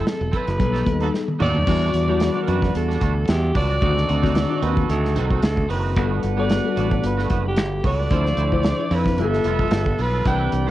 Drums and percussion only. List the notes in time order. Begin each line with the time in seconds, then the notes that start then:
0.07 snare
0.33 kick, closed hi-hat
0.47 snare, closed hi-hat
0.60 kick, closed hi-hat
0.74 snare, closed hi-hat
0.86 kick, closed hi-hat
1.00 closed hi-hat
1.14 snare
1.28 high tom
1.40 mid tom
1.55 floor tom
1.67 kick, crash
1.94 closed hi-hat
2.20 snare, closed hi-hat
2.48 closed hi-hat
2.62 kick, snare
2.75 closed hi-hat
2.90 snare
3.01 kick, closed hi-hat
3.28 snare, closed hi-hat
3.55 kick, open hi-hat
3.82 kick, closed hi-hat
3.97 snare
4.09 closed hi-hat
4.24 kick, snare
4.35 snare, closed hi-hat
4.63 closed hi-hat
4.77 kick
4.90 closed hi-hat
5.05 snare
5.16 closed hi-hat
5.31 kick
5.42 snare, closed hi-hat
5.57 kick
5.70 open hi-hat
5.96 kick, closed hi-hat
6.23 closed hi-hat
6.49 snare, closed hi-hat
6.77 closed hi-hat
6.91 kick
7.03 closed hi-hat
7.19 snare
7.30 kick, closed hi-hat
7.56 snare, closed hi-hat
7.84 kick, open hi-hat
8.10 kick, closed hi-hat
8.26 snare
8.37 closed hi-hat
8.52 kick
8.63 snare, closed hi-hat
8.91 open hi-hat
9.06 kick, snare
9.18 closed hi-hat
9.33 snare
9.44 closed hi-hat
9.59 kick
9.71 snare, closed hi-hat
9.86 kick
9.99 open hi-hat
10.25 kick, closed hi-hat
10.52 closed hi-hat